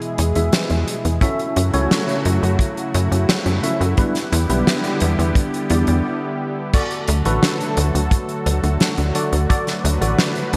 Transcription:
0.00 1.19 B2 medium
0.00 1.19 E3 medium
0.00 1.19 G#3 medium
0.00 1.19 E4 medium
0.00 0.32 G#4 medium
0.00 1.19 G#4 medium
0.00 0.32 B4 medium
0.00 0.32 E5 loud
0.00 closed hi-hat soft
0.18 0.33 E2 medium
0.18 closed hi-hat loud
0.35 0.50 E2 medium
0.35 1.18 G#4 medium
0.35 1.18 B4 medium
0.35 1.18 E5 medium
0.35 closed hi-hat medium
0.53 snare loud
0.53 closed hi-hat medium
0.70 0.85 E2 medium
0.70 closed hi-hat soft
0.88 closed hi-hat loud
1.05 1.19 E2 medium
1.05 closed hi-hat medium
1.21 3.95 C#3 medium
1.21 3.95 F#3 medium
1.21 3.95 A3 medium
1.21 1.70 C#4 medium
1.21 1.70 E4 medium
1.21 6.70 E4 medium
1.21 1.70 F#4 medium
1.21 3.95 F#4 medium
1.21 1.70 A4 medium
1.21 1.70 E5 medium
1.21 kick loud
1.21 closed hi-hat medium
1.39 closed hi-hat soft
1.56 1.71 F#2 medium
1.56 closed hi-hat loud
1.74 1.88 C#2 medium
1.74 3.59 C#4 medium
1.74 3.59 E4 medium
1.74 3.59 F#4 medium
1.74 3.59 A4 medium
1.74 3.59 C#5 loud
1.74 closed hi-hat medium
1.91 snare loud
1.91 closed hi-hat medium
2.09 closed hi-hat soft
2.25 2.40 F#2 medium
2.25 closed hi-hat medium
2.43 2.57 F#2 medium
2.43 closed hi-hat medium
2.59 kick loud
2.59 closed hi-hat medium
2.77 closed hi-hat soft
2.94 3.09 F#2 loud
2.94 closed hi-hat loud
3.11 3.26 F#2 medium
3.11 closed hi-hat medium
3.29 snare loud
3.29 closed hi-hat medium
3.46 3.60 F#2 medium
3.46 closed hi-hat soft
3.63 3.94 C#4 medium
3.63 3.94 E4 medium
3.63 3.94 F#4 medium
3.63 3.94 A4 medium
3.63 3.94 E5 medium
3.63 closed hi-hat loud
3.81 3.95 F#2 medium
3.81 closed hi-hat medium
3.97 6.71 D3 medium
3.97 6.71 G3 medium
3.97 4.17 G3 medium
3.97 6.71 B3 medium
3.97 4.16 B3 medium
3.97 4.16 D4 medium
3.97 4.17 E4 medium
3.97 6.71 G4 medium
3.97 4.16 B4 medium
3.97 kick loud
3.97 closed hi-hat medium
4.15 snare soft
4.15 closed hi-hat soft
4.32 4.47 E2 loud
4.32 closed hi-hat loud
4.50 4.64 B1 medium
4.50 5.67 G3 medium
4.50 5.67 B3 medium
4.50 5.67 D4 medium
4.50 5.67 E4 medium
4.50 5.67 B4 loud
4.50 closed hi-hat medium
4.67 snare loud
4.67 closed hi-hat medium
4.84 closed hi-hat soft
5.00 5.16 E2 medium
5.00 closed hi-hat medium
5.19 5.33 E2 medium
5.19 closed hi-hat medium
5.35 kick loud
5.35 closed hi-hat medium
5.54 closed hi-hat soft
5.70 5.85 E2 medium
5.70 6.05 G3 medium
5.70 6.05 B3 medium
5.70 6.05 D4 medium
5.70 6.05 E4 medium
5.70 6.05 D5 medium
5.70 closed hi-hat medium
5.87 6.02 E2 medium
5.87 closed hi-hat medium
6.74 10.57 D3 medium
6.74 10.57 F#3 medium
6.74 10.57 A3 medium
6.74 7.21 F#4 medium
6.74 10.57 F#4 medium
6.74 7.21 A4 medium
6.74 9.47 A4 medium
6.74 7.21 D5 medium
6.74 kick loud
6.74 closed hi-hat medium
6.74 crash loud
6.91 closed hi-hat soft
7.08 7.23 D2 loud
7.08 closed hi-hat loud
7.25 7.40 A1 medium
7.25 9.11 F#4 medium
7.25 9.11 A4 medium
7.25 9.11 B4 loud
7.25 closed hi-hat medium
7.43 snare loud
7.43 closed hi-hat medium
7.61 closed hi-hat soft
7.77 7.92 D2 medium
7.77 closed hi-hat loud
7.95 8.09 D2 medium
7.95 closed hi-hat medium
8.11 kick loud
8.11 closed hi-hat medium
8.29 closed hi-hat soft
8.46 8.61 D2 medium
8.46 closed hi-hat medium
8.63 8.78 D2 medium
8.63 closed hi-hat medium
8.80 snare loud
8.80 closed hi-hat medium
8.98 9.12 D2 medium
8.98 closed hi-hat medium
9.15 9.46 F#4 medium
9.15 9.46 A4 medium
9.15 9.46 D5 medium
9.15 closed hi-hat loud
9.33 9.47 D2 medium
9.33 closed hi-hat medium
9.50 9.68 F#4 medium
9.50 9.68 A4 medium
9.50 10.57 B4 medium
9.50 9.68 D5 loud
9.50 kick loud
9.50 closed hi-hat medium
9.67 snare soft
9.67 closed hi-hat soft
9.84 9.99 D2 loud
9.84 closed hi-hat loud
10.01 10.16 A1 medium
10.01 10.57 F#4 medium
10.01 10.57 A4 medium
10.01 10.57 D5 loud
10.01 closed hi-hat medium
10.19 snare loud
10.19 closed hi-hat medium
10.36 closed hi-hat soft
10.53 10.57 D2 medium
10.53 closed hi-hat medium

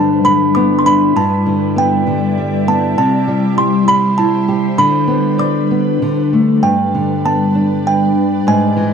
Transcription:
0.00 1.12 G2 medium
0.00 0.23 D3 medium
0.00 1.14 G3 medium
0.00 0.85 D4 soft
0.00 4.74 E4 medium
0.00 1.14 B4 medium
0.00 0.25 A5 medium
0.24 1.13 D3 medium
0.24 0.56 B5 medium
0.55 1.15 B3 medium
0.55 0.77 D6 medium
0.79 0.86 C6 medium
0.86 1.15 D4 medium
0.86 1.17 B5 medium
1.16 2.94 G2 medium
1.16 5.97 G3 medium
1.16 2.96 D5 medium
1.16 1.79 A5 medium
1.46 2.06 D3 soft
1.76 2.66 B3 soft
1.76 2.71 G5 medium
2.07 2.95 D3 medium
2.38 2.96 G3 soft
2.67 2.97 B3 medium
2.67 2.97 A5 medium
2.98 4.74 C3 medium
2.98 4.76 C5 medium
2.98 3.60 A5 medium
3.28 3.87 G3 medium
3.58 4.47 G4 medium
3.58 3.89 C6 medium
3.88 4.75 G3 medium
3.88 4.19 B5 medium
4.18 4.77 E4 medium
4.18 4.74 A5 medium
4.48 4.77 G4 soft
4.77 5.99 D3 medium
4.77 5.98 D3 medium
4.77 6.59 D4 medium
4.77 5.99 B4 medium
4.77 5.41 B5 medium
5.07 5.70 B3 medium
5.38 5.99 D5 medium
5.38 6.28 D6 medium
5.71 6.01 B3 medium
6.02 6.62 D3 medium
6.33 6.63 A3 soft
6.60 8.41 G2 medium
6.60 8.42 G3 medium
6.60 8.94 D4 medium
6.60 8.43 B4 medium
6.60 7.27 G5 medium
6.95 8.12 D3 soft
7.25 8.42 B3 soft
7.25 7.82 A5 medium
7.55 8.43 D4 medium
7.87 8.48 G5 medium
8.45 8.94 G#2 medium
8.45 8.94 E3 medium
8.45 8.94 G#4 medium
8.45 8.94 G#5 medium
8.77 8.94 E3 medium

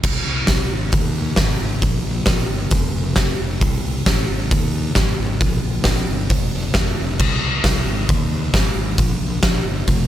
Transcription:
0.03 0.23 C2 loud
0.03 kick loud
0.03 crash loud
0.27 0.46 C2 medium
0.47 0.68 C2 medium
0.47 kick loud
0.47 snare loud
0.47 open hi-hat medium
0.72 0.91 G#1 loud
0.92 1.32 D#2 medium
0.92 kick loud
0.92 open hi-hat medium
1.36 1.57 G#1 medium
1.36 kick loud
1.36 snare loud
1.36 open hi-hat medium
1.61 1.81 G#1 medium
1.82 2.02 A#1 loud
1.82 kick loud
1.82 open hi-hat medium
2.06 2.25 A#1 medium
2.26 2.46 A#1 medium
2.26 kick loud
2.26 snare loud
2.26 open hi-hat medium
2.50 2.70 G1 medium
2.71 2.91 F1 medium
2.71 kick loud
2.71 open hi-hat medium
2.95 3.15 F1 medium
3.16 3.36 F1 medium
3.16 kick loud
3.16 snare loud
3.16 open hi-hat medium
3.40 3.59 F1 medium
3.61 3.81 C2 loud
3.61 kick loud
3.61 open hi-hat medium
3.85 4.04 C2 medium
4.06 4.26 A1 medium
4.06 kick loud
4.06 snare loud
4.06 open hi-hat medium
4.31 4.49 G#1 medium
4.51 4.90 D#2 loud
4.51 kick loud
4.51 open hi-hat medium
4.95 5.15 G#1 medium
4.95 kick loud
4.95 snare loud
4.95 open hi-hat medium
5.20 5.39 G#1 medium
5.41 5.61 A#1 loud
5.41 kick loud
5.41 open hi-hat medium
5.63 5.83 A#1 medium
5.84 6.04 A#1 medium
5.84 kick loud
5.84 snare loud
5.84 open hi-hat medium
6.09 6.31 G1 medium
6.30 6.50 F1 medium
6.30 kick loud
6.30 open hi-hat medium
6.55 6.73 F1 medium
6.74 6.94 F1 medium
6.74 kick loud
6.74 snare loud
6.74 open hi-hat medium
7.00 7.18 F1 medium
7.19 7.39 C2 loud
7.19 kick loud
7.19 crash loud
7.43 7.62 C2 medium
7.64 7.84 C2 loud
7.64 kick loud
7.64 snare loud
7.64 open hi-hat medium
7.86 8.06 G#1 medium
8.09 8.48 D#2 medium
8.09 kick loud
8.09 open hi-hat medium
8.54 8.73 G#1 medium
8.54 kick loud
8.54 snare loud
8.54 open hi-hat medium
8.76 8.95 G#1 medium
8.98 9.18 A#1 loud
8.98 kick loud
8.98 open hi-hat medium
9.20 9.40 A#1 medium
9.43 9.62 A#1 medium
9.43 kick loud
9.43 snare loud
9.43 open hi-hat medium
9.66 9.85 G1 medium
9.87 10.07 F1 medium
9.87 kick loud
9.87 open hi-hat medium

